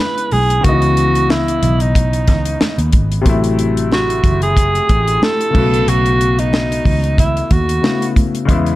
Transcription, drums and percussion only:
0.00 high conga
0.18 closed hi-hat
0.31 open hi-hat, high conga
0.50 closed hi-hat
0.64 kick, closed hi-hat
0.82 closed hi-hat
0.97 closed hi-hat
1.15 closed hi-hat
1.30 snare, high conga
1.48 closed hi-hat
1.63 closed hi-hat, low conga
1.80 closed hi-hat
1.95 kick, closed hi-hat, muted conga
2.13 closed hi-hat
2.28 kick, snare, closed hi-hat, muted conga, low conga
2.45 closed hi-hat
2.61 snare, high conga
2.79 closed hi-hat
2.92 kick, closed hi-hat, high conga
3.12 closed hi-hat
3.26 kick, closed hi-hat, muted conga
3.44 closed hi-hat
3.59 closed hi-hat
3.77 closed hi-hat
3.91 snare, high conga
4.10 closed hi-hat
4.24 kick, closed hi-hat, low conga
4.42 closed hi-hat
4.57 kick, closed hi-hat, muted conga
4.75 closed hi-hat
4.89 kick, closed hi-hat, muted conga
5.08 closed hi-hat
5.22 snare, high conga
5.41 closed hi-hat
5.55 kick, crash, high conga
5.74 closed hi-hat
5.88 closed hi-hat, muted conga
6.06 closed hi-hat
6.21 closed hi-hat
6.39 closed hi-hat
6.53 snare, high conga
6.72 closed hi-hat
6.85 kick, open hi-hat, low conga
7.04 closed hi-hat
7.18 kick, closed hi-hat, muted conga, low conga
7.37 closed hi-hat
7.51 kick, closed hi-hat, muted conga, low conga
7.69 closed hi-hat
7.84 snare, high conga
8.02 closed hi-hat
8.16 kick, closed hi-hat, high conga
8.35 closed hi-hat
8.49 kick, closed hi-hat, muted conga
8.66 closed hi-hat

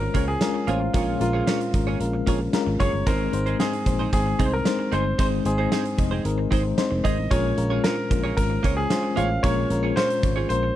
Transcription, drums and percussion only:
0.15 kick, closed hi-hat
0.41 snare, closed hi-hat
0.68 closed hi-hat
0.94 kick, closed hi-hat
1.21 closed hi-hat
1.47 snare, closed hi-hat
1.61 closed hi-hat
1.74 kick, closed hi-hat
2.01 closed hi-hat
2.27 kick, closed hi-hat
2.53 snare, closed hi-hat
2.80 kick, closed hi-hat
3.07 kick, closed hi-hat
3.33 closed hi-hat
3.47 closed hi-hat
3.60 snare, closed hi-hat
3.73 closed hi-hat
3.86 kick, closed hi-hat
4.13 kick, closed hi-hat
4.39 kick, closed hi-hat
4.65 snare, closed hi-hat
4.92 closed hi-hat
5.19 kick, closed hi-hat
5.45 closed hi-hat
5.72 snare, closed hi-hat
5.85 closed hi-hat
5.98 kick, closed hi-hat
6.25 closed hi-hat
6.52 kick, closed hi-hat
6.78 snare, closed hi-hat
7.05 kick, closed hi-hat
7.31 kick, closed hi-hat
7.58 closed hi-hat
7.84 snare, closed hi-hat
8.11 kick, closed hi-hat
8.37 kick, closed hi-hat
8.64 kick, closed hi-hat
8.90 snare, closed hi-hat
9.17 closed hi-hat
9.44 kick, closed hi-hat
9.70 closed hi-hat
9.97 snare, closed hi-hat
10.10 closed hi-hat
10.23 kick, closed hi-hat
10.50 closed hi-hat

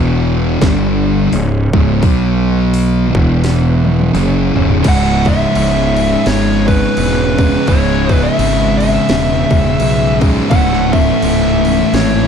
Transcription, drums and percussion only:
0.61 kick, snare, open hi-hat
1.33 open hi-hat
1.73 kick
2.03 kick, open hi-hat
2.74 open hi-hat
3.15 kick
3.44 snare, open hi-hat
3.85 high tom
4.00 high tom
4.15 open hi-hat, mid tom
4.56 floor tom
4.70 floor tom
4.84 kick, crash
5.25 kick, crash
5.55 crash
5.96 crash
6.26 snare, crash
6.68 kick, crash
6.97 crash
7.38 kick, crash
7.67 kick, crash
8.09 kick, crash
8.39 crash
8.80 crash
9.09 snare, crash
9.50 kick, crash
9.80 crash
10.21 kick, crash
10.51 kick, crash
10.73 snare
10.93 kick, crash
11.22 crash
11.65 crash
11.94 snare, crash

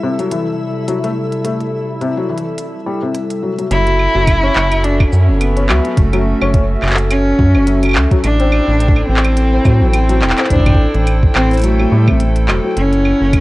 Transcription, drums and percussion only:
0.19 closed hi-hat
0.32 closed hi-hat
0.88 closed hi-hat
1.04 closed hi-hat
1.32 closed hi-hat
1.45 closed hi-hat
1.61 closed hi-hat
2.01 closed hi-hat
2.38 closed hi-hat
2.58 closed hi-hat
3.14 closed hi-hat
3.30 closed hi-hat
3.59 closed hi-hat
3.71 closed hi-hat
3.87 closed hi-hat
3.99 claves
4.28 kick, closed hi-hat, claves
4.56 clap
4.72 closed hi-hat, claves
4.84 closed hi-hat
5.00 kick, claves
5.12 shaker
5.41 closed hi-hat, claves
5.57 closed hi-hat
5.69 clap, claves
5.85 closed hi-hat
5.97 kick, closed hi-hat
6.13 closed hi-hat, claves
6.41 claves
6.54 kick, closed hi-hat
6.82 clap, claves
6.86 clap
6.90 clap
6.94 clap
6.98 closed hi-hat
7.11 closed hi-hat, claves
7.39 kick
7.55 claves
7.67 closed hi-hat
7.83 closed hi-hat, claves
7.85 claves
7.89 claves
7.91 claves
7.93 clap, claves
8.11 kick, closed hi-hat
8.24 closed hi-hat, claves
8.40 closed hi-hat
8.52 claves
8.80 closed hi-hat
8.88 kick
8.96 claves
9.17 clap
9.25 closed hi-hat, claves
9.37 closed hi-hat
9.65 kick, claves, shaker
9.94 closed hi-hat, claves
10.09 closed hi-hat
10.22 clap
10.30 clap
10.38 clap, closed hi-hat, claves
10.44 clap
10.50 kick, closed hi-hat
10.56 kick
10.60 kick
10.66 kick, closed hi-hat, claves
10.69 kick
10.74 kick
10.94 closed hi-hat
11.07 closed hi-hat, claves
11.23 kick
11.35 clap, claves
11.51 closed hi-hat
11.53 closed hi-hat
11.57 closed hi-hat
11.59 closed hi-hat
11.61 closed hi-hat
11.63 closed hi-hat
11.79 claves
12.08 kick, claves
12.20 closed hi-hat
12.36 closed hi-hat
12.48 clap, claves
12.77 closed hi-hat
12.93 closed hi-hat
13.05 claves
13.33 kick, closed hi-hat, claves

